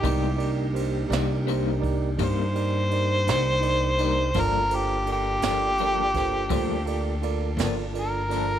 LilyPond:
<<
  \new Staff \with { instrumentName = "Tine electric piano" } { \time 12/8 \key g \minor \tempo 4. = 56 <ees' g' bes' d''>8 <ees' g' bes' d''>8 <ees' g' bes' c''>8 <ees' g' bes' d''>8 <ees' g' bes' c''>8 <ees' g' bes' d''>8 <ees' g' bes' d''>8 <ees' g' bes' d''>8 <ees' g' bes' d''>8 <ees' g' bes' d''>8 <ees' g' bes' d''>8 <ees' g' bes' d''>8 | <f' a' bes' d''>8 <f' a' bes' c''>8 <f' a' bes' d''>8 <f' a' bes' d''>8 <f' a' bes' d''>8 <f' a' bes' c''>8 <f' a' bes' c''>8 <f' a' bes' d''>8 <f' a' bes' d''>8 <f' a' bes' d''>8 <f' a' bes' d''>8 <f' a' bes' d''>8 | }
  \new Staff \with { instrumentName = "Harmonica" } { \time 12/8 \key g \minor g'4 r2 c''2. | bes'8 g'8 g'2. r4 bes'4 | }
  \new Staff \with { instrumentName = "Tonewheel organ" } { \time 12/8 \key g \minor <aes b ees' e'>8 <bes d' ees' g'>1~ <bes d' ees' g'>4. | <bes d' f' a''>1. | }
  \new Staff \with { instrumentName = "Clean electric guitar" } { \time 12/8 \key g \minor <c g bes ees'>8 r4 <g bes ees'>8 <c g bes ees'>8 r8 <c g bes ees'>8 r4 <g bes ees'>8 r8 <g bes ees'>8 | <g, f bes d'>8 r4 <f bes d'>8 <g, f bes d'>8 r8 <g, f bes d'>8 r4 <f bes d'>8 r8 <f bes d'>8 | }
  \new Staff \with { instrumentName = "Upright bass" } { \clef bass \time 12/8 \key g \minor c,4. c,4. g,4. c,4. | g,,4. g,,4. d,4. g,,4. | }
  \new DrumStaff \with { instrumentName = "Drums" } \drummode { \time 12/8 <bd cymr>8 cymr8 cymr8 <cymr sn>8 cymr8 <bd cymr>8 <bd cymr>8 cymr8 cymr8 <cymr sn>8 cymr8 cymr8 | <bd cymr>8 cymr8 cymr8 <cymr sn>8 cymr8 <bd cymr sn>8 <bd cymr>8 cymr8 cymr8 <cymr sn>8 cymr8 <cymr sn>8 | }
>>